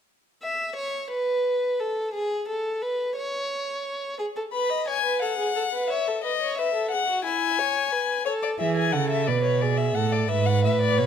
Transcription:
0.42 0.74 E5 medium
0.76 1.10 C#5 medium
1.10 1.81 B4 medium
1.79 2.13 A4 medium
2.14 2.47 G#4 medium
2.48 2.83 A4 medium
2.82 3.16 B4 medium
3.16 4.17 C#5 medium
4.19 4.26 G#4 medium
4.36 4.43 A4 medium
4.53 4.71 B4 medium
4.53 4.85 B5 medium
4.70 4.89 D#5 medium
4.87 5.03 C#5 medium
4.87 5.21 G#5 medium
5.04 5.22 B4 medium
5.21 5.37 A4 medium
5.21 5.88 F#5 medium
5.38 5.55 G#4 medium
5.56 5.62 A4 medium
5.73 5.92 B4 medium
5.89 6.09 C#5 medium
5.89 6.23 E5 medium
6.08 6.23 A4 medium
6.23 6.31 B4 medium
6.23 6.57 D#5 medium
6.41 6.60 C#5 medium
6.57 6.74 B4 medium
6.57 6.90 E5 medium
6.74 6.94 A4 medium
6.90 7.07 G#4 medium
6.90 7.23 F#5 medium
7.08 7.25 F#4 medium
7.24 7.60 E4 medium
7.24 8.24 G#5 medium
7.58 7.94 C#5 medium
7.92 8.26 B4 medium
8.25 8.60 A4 medium
8.25 8.32 C#5 medium
8.42 8.49 D5 medium
8.59 8.96 E3 medium
8.59 8.95 G#4 medium
8.59 8.75 E5 medium
8.76 8.94 G#5 medium
8.92 9.29 C#3 medium
8.92 9.30 A4 medium
8.92 9.09 F#5 medium
9.09 9.28 E5 medium
9.27 9.95 B2 medium
9.27 9.63 B4 medium
9.27 9.43 D5 medium
9.43 9.62 C#5 medium
9.61 9.98 G#4 medium
9.61 9.79 D5 medium
9.77 9.96 E5 medium
9.94 10.29 A2 medium
9.94 10.30 A4 medium
9.94 10.13 F#5 medium
10.12 10.30 D5 medium
10.28 10.66 G#2 medium
10.28 11.06 B4 medium
10.28 10.47 E5 medium
10.45 10.63 F#5 medium
10.64 11.00 A2 medium
10.64 10.80 E5 medium
10.81 10.99 D5 medium
10.98 11.06 B2 medium
10.98 11.06 C#5 medium

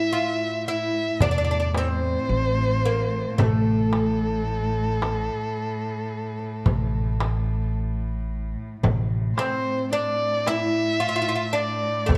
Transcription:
0.00 8.84 A2 medium
0.00 0.12 E4 loud
0.00 0.66 E5 medium
0.12 0.68 F4 medium
0.12 darbuka ka soft
0.67 1.18 E4 medium
0.67 1.23 E5 medium
0.94 darbuka ka soft
1.20 2.15 E2 medium
1.20 1.29 D4 medium
1.20 1.75 D5 medium
1.20 frame drum medium
1.20 darbuka dum medium
1.31 1.37 D4 medium
1.38 1.43 D4 medium
1.45 1.50 D4 medium
1.51 1.59 D4 medium
1.60 1.67 D4 medium
1.75 2.85 C4 medium
1.75 3.40 C5 medium
1.75 darbuka tek medium
1.75 frame drum medium
2.29 3.24 A1 medium
2.85 3.38 A#3 medium
3.38 5.28 A1 medium
3.38 7.70 A3 medium
3.38 7.74 A4 medium
3.38 darbuka dum medium
3.38 frame drum medium
3.93 darbuka tek medium
4.48 darbuka ka soft
5.02 darbuka tek medium
5.02 frame drum medium
5.57 darbuka ka soft
6.39 darbuka ka soft
6.66 8.55 A1 medium
6.66 frame drum medium
6.66 darbuka dum medium
7.20 darbuka tek medium
7.20 frame drum medium
8.83 9.31 A1 medium
8.83 12.18 A2 medium
8.83 darbuka dum medium
8.83 frame drum medium
9.36 9.94 C4 medium
9.36 9.88 C5 medium
9.36 darbuka tek medium
9.36 frame drum medium
9.92 10.47 D4 medium
9.92 10.49 D5 medium
9.92 darbuka ka soft
10.46 11.00 E4 medium
10.46 11.57 E5 loud
10.46 darbuka tek medium
10.46 frame drum medium
11.00 11.07 F4 medium
11.09 11.14 F4 medium
11.16 11.20 F4 medium
11.22 11.27 F4 medium
11.29 11.34 F4 medium
11.36 11.45 F4 medium
11.53 12.10 D4 medium
11.53 12.11 D5 medium
11.83 darbuka ka soft
12.06 12.18 E2 medium
12.06 12.14 A3 medium
12.06 12.18 A4 medium
12.06 frame drum medium
12.10 darbuka dum medium

